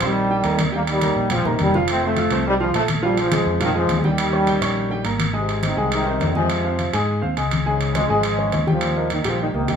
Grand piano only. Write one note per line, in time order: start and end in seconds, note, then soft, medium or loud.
0.02 0.25 C4 medium
0.02 0.25 C5 medium
0.02 0.26 C6 medium
0.31 0.42 G3 medium
0.31 0.42 G4 medium
0.31 0.42 G5 medium
0.44 0.68 A#3 medium
0.44 0.68 A#4 medium
0.44 0.68 A#5 medium
0.72 0.96 G3 medium
0.72 0.96 G4 medium
0.72 0.96 G5 medium
1.02 1.26 A#3 medium
1.02 1.26 A#4 medium
1.02 1.26 A#5 medium
1.31 1.43 G3 medium
1.31 1.43 G4 medium
1.31 1.43 G5 medium
1.45 1.69 A#3 medium
1.45 1.69 A#4 medium
1.45 1.69 A#5 medium
1.75 1.98 F3 medium
1.75 1.98 F4 medium
1.75 1.99 F5 medium
2.03 2.15 C4 medium
2.03 2.15 C5 medium
2.03 2.15 C6 medium
2.17 2.29 F4 medium
2.17 2.29 F5 medium
2.17 2.29 F6 medium
2.32 2.56 C4 medium
2.32 2.56 C5 medium
2.32 2.56 C6 medium
2.60 2.72 F3 medium
2.60 2.72 F4 medium
2.60 2.72 F5 medium
2.75 2.98 A3 medium
2.75 2.99 A4 medium
2.75 2.98 A5 medium
3.03 3.27 F3 medium
3.03 3.27 F4 medium
3.03 3.27 F5 medium
3.32 3.56 G#3 medium
3.32 3.56 G#4 medium
3.32 3.56 G#5 medium
3.60 3.72 F3 medium
3.60 3.73 F4 medium
3.60 3.73 F5 medium
3.75 3.99 G#3 medium
3.75 3.99 G#4 medium
3.75 3.99 G#5 medium
4.04 4.28 G3 medium
4.04 4.28 G4 medium
4.04 4.28 G5 medium
4.33 4.45 C#4 medium
4.33 4.45 C#5 medium
4.33 4.45 C#6 medium
4.47 4.59 G4 medium
4.47 4.59 G5 medium
4.47 4.60 G6 medium
4.61 4.85 C#4 medium
4.61 4.85 C#5 medium
4.61 4.86 C#6 medium
4.90 5.02 G3 medium
4.90 5.03 G4 medium
4.90 5.03 G5 medium
5.05 5.29 A#3 medium
5.05 5.29 A#4 medium
5.05 5.29 A#5 medium
5.33 5.57 G#3 medium
5.33 5.58 G#4 medium
5.33 5.58 G#5 medium
5.63 5.75 C4 medium
5.63 5.75 C5 medium
5.63 5.75 D#5 medium
5.77 6.01 G#3 medium
5.77 6.01 G#4 medium
5.77 6.01 G#5 medium
6.06 6.18 C4 medium
6.06 6.18 C5 medium
6.06 6.19 D#5 medium
6.21 6.33 C4 medium
6.21 6.33 C5 medium
6.21 6.33 D#5 medium
6.36 6.59 G#3 medium
6.36 6.60 G#4 medium
6.36 6.60 G#5 medium
6.64 6.88 C4 medium
6.64 6.88 C5 medium
6.64 6.88 F5 medium
6.93 7.17 G#3 medium
6.93 7.17 G#4 medium
6.93 7.17 G#5 medium
7.21 7.34 C4 medium
7.21 7.34 C5 medium
7.21 7.34 F5 medium
7.37 7.61 G#3 medium
7.37 7.61 G#4 medium
7.37 7.61 G#5 medium
7.66 7.90 G#3 medium
7.66 7.90 G#4 medium
7.66 7.90 G#5 medium
7.95 8.07 C#4 medium
7.95 8.07 C#5 medium
7.95 8.07 D#5 medium
8.09 8.33 G#3 medium
8.09 8.33 G#4 medium
8.09 8.33 G#5 medium
8.38 8.50 C#4 medium
8.38 8.50 C#5 medium
8.38 8.51 D#5 medium
8.52 8.64 C#4 medium
8.52 8.65 C#5 medium
8.52 8.65 D#5 medium
8.67 8.91 G3 medium
8.67 8.91 G4 medium
8.67 8.91 G5 medium
8.96 9.20 A#3 medium
8.96 9.20 A#4 medium
8.96 9.20 D#5 medium
9.25 9.49 G3 medium
9.25 9.49 G4 medium
9.25 9.49 G5 medium
9.54 9.66 A#3 medium
9.54 9.66 A#4 medium
9.54 9.66 D#5 medium
9.68 9.76 G3 medium
9.68 9.76 G4 medium
9.68 9.76 G5 medium